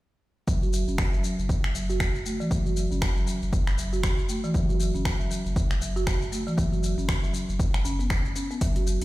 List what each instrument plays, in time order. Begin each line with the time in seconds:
0.48 sub bass F#1, marimba F#3, kick, shaker
0.63 marimba F#4, shaker
0.73 marimba F#3, shaker
0.88 sub bass F#1, marimba C#4, shaker
0.98 marimba C#3, finger snap, kick, shaker
1.13 marimba F#3, shaker
1.24 marimba F#3, shaker
1.38 sub bass F#1, shaker
1.49 kick, shaker
1.64 finger snap, shaker
1.74 sub bass F#1, marimba F#3, shaker
1.89 marimba F#4, shaker
2.00 finger snap, kick, shaker
2.15 sub bass F#1, shaker
2.26 marimba A3, shaker
2.40 marimba E3, shaker
2.51 sub bass F#1, marimba F#3, kick, shaker
2.66 marimba F#4, shaker
2.76 marimba F#3, shaker
2.91 sub bass F#1, marimba C#4, shaker
3.02 marimba C#3, finger snap, kick, shaker
3.16 marimba F#3, shaker
3.27 marimba F#3, shaker
3.42 sub bass F#1, shaker
3.53 kick, shaker
3.67 finger snap, shaker
3.78 sub bass F#1, marimba F#3, shaker
3.93 marimba F#4, shaker
4.03 finger snap, kick, shaker
4.18 sub bass F#1, shaker
4.29 marimba A3, shaker
4.44 marimba E3, shaker
4.54 sub bass F#1, marimba F#3, kick, shaker
4.69 marimba F#4, shaker
4.80 marimba F#3, shaker
4.94 sub bass F#1, marimba C#4, shaker
5.05 marimba C#3, finger snap, kick, shaker
5.20 marimba F#3, shaker
5.31 marimba F#3, shaker
5.45 sub bass F#1, shaker
5.56 kick, shaker
5.71 finger snap, shaker
5.81 sub bass F#1, marimba F#3, shaker
5.96 marimba F#4, shaker
6.07 finger snap, kick, shaker
6.22 sub bass F#1, shaker
6.32 marimba A3, shaker
6.47 marimba E3, shaker
6.58 sub bass F#1, marimba F#3, kick, shaker
6.72 marimba F#4, shaker
6.83 marimba F#3, shaker
6.98 sub bass F#1, marimba C#4, shaker
7.08 marimba C#3, finger snap, kick, shaker
7.23 marimba F#3, shaker
7.34 marimba F#3, shaker
7.49 sub bass F#1, shaker
7.59 kick, shaker
7.74 finger snap, shaker
7.85 sub bass F#1, marimba C#4, shaker
7.99 marimba B3, shaker
8.10 finger snap, kick, shaker
8.25 sub bass F#1, shaker
8.36 marimba C#4, shaker
8.51 marimba B3, shaker
8.61 sub bass F#1, marimba F#3, kick, closed hi-hat, shaker
8.76 marimba F#4, closed hi-hat, shaker
8.87 marimba F#3, shaker
9.01 sub bass F#1, closed hi-hat